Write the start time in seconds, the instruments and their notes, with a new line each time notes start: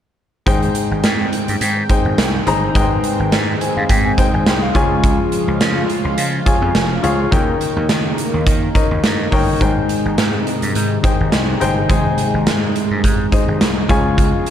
0.46 slap bass G#1, grand piano G#2 D#4 G#4 C5 G5, analog synth pad D#3 G#3 C4 G5, kick, closed hi-hat
0.63 closed hi-hat
0.75 closed hi-hat
0.91 slap bass G#1
1.04 slap bass G#2, snare, closed hi-hat
1.33 closed hi-hat
1.48 slap bass G2, closed hi-hat
1.61 slap bass G#2, closed hi-hat
1.89 grand piano D#4 G#4 C5 G5, kick, closed hi-hat
2.05 slap bass G#1
2.17 slap bass C2, snare, closed hi-hat
2.46 slap bass G1, grand piano D#4 G#4 C5 A#5, closed hi-hat
2.75 slap bass G#1, grand piano G#2 D#4 G#4 B4 G5, kick, closed hi-hat
2.82 grand piano C5
3.04 closed hi-hat
3.19 slap bass G#1
3.32 slap bass G#2, snare, closed hi-hat
3.61 grand piano G#5, closed hi-hat
3.77 slap bass G2, grand piano F5
3.89 slap bass G#2, grand piano G5, kick, closed hi-hat
4.05 grand piano G#5
4.18 grand piano D#4 G#4 C5 G5, kick, closed hi-hat
4.34 slap bass G#1, grand piano G#5
4.46 slap bass C2, grand piano G5, snare, closed hi-hat
4.62 grand piano F5
4.75 slap bass C#2, analog synth pad C#3 F3 F4, grand piano C#3 F4 G#4 C#5 G#5, kick, closed hi-hat
5.04 kick, closed hi-hat
5.32 closed hi-hat
5.48 slap bass C#2
5.60 slap bass C#3, snare, closed hi-hat
5.90 closed hi-hat
6.04 slap bass C#2
6.17 slap bass C#3, closed hi-hat
6.46 grand piano F4 G#4 C#5 G#5, kick, closed hi-hat
6.62 slap bass F2
6.75 slap bass F1, snare, closed hi-hat
7.03 slap bass C#2, grand piano F4 G#4 C#5 F5, closed hi-hat
7.31 slap bass D#2, grand piano D#3 D#4 A#4 C#5 G5, analog synth pad D#3 A#3 D#4, kick, closed hi-hat
7.61 closed hi-hat
7.76 slap bass D#2
7.89 slap bass D#3, snare, closed hi-hat
8.18 closed hi-hat
8.34 slap bass D#2
8.47 slap bass D#3, kick, closed hi-hat
8.75 grand piano D#4 A#4 C#5 D#5, kick, closed hi-hat
8.91 slap bass D#2
9.04 slap bass G2, snare, closed hi-hat
9.32 slap bass G1, grand piano D#4 A#4 C#5 G5, kick, open hi-hat
9.60 slap bass G#1, grand piano G#2 D#4 G#4 C5 G5, analog synth pad C3 G#3, kick, closed hi-hat
9.89 closed hi-hat
10.05 slap bass G#1
10.18 slap bass G#2, snare, closed hi-hat
10.47 closed hi-hat
10.62 slap bass G2, closed hi-hat
10.75 slap bass G#2, closed hi-hat
11.03 grand piano D#4 G#4 C5 G5, kick, closed hi-hat
11.20 slap bass G#1
11.32 slap bass C2, snare, closed hi-hat
11.60 slap bass G1, grand piano D#4 G#4 C5 G5, closed hi-hat
11.89 slap bass G#1, grand piano G#2 D#4 G#4 C5 G#5, kick, closed hi-hat
12.18 closed hi-hat
12.34 slap bass G#1
12.47 slap bass G#2, snare, closed hi-hat
12.76 closed hi-hat
12.91 slap bass G2
13.04 slap bass G#2, kick, closed hi-hat
13.32 grand piano D#4 G#4 C5 D#5, kick, closed hi-hat
13.48 slap bass G#1
13.61 slap bass C2, snare, closed hi-hat
13.89 slap bass C#2, analog synth pad C#3 F3 F4, grand piano C#3 F4 G#4 C#5 G#5, kick, closed hi-hat
14.18 kick, closed hi-hat
14.46 closed hi-hat